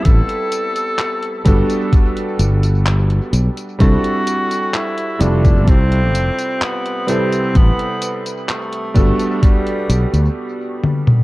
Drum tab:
HH |xxxxxxxxxxxxxxxx|xxxxxxxxxxxxxxxx|xxxxxxxxxxxx----|
TB |x-xxx-xxx-xxx-xx|x-xxx-xxx-xxx-xx|x-xxx-xxx-xx----|
CP |----x-------x---|----x-------x---|----x-----------|
T1 |----------------|----------------|--------------o-|
T2 |----------------|----------------|---------------o|
BD |o-----o-o-------|o------oo-------|o-----o-o-------|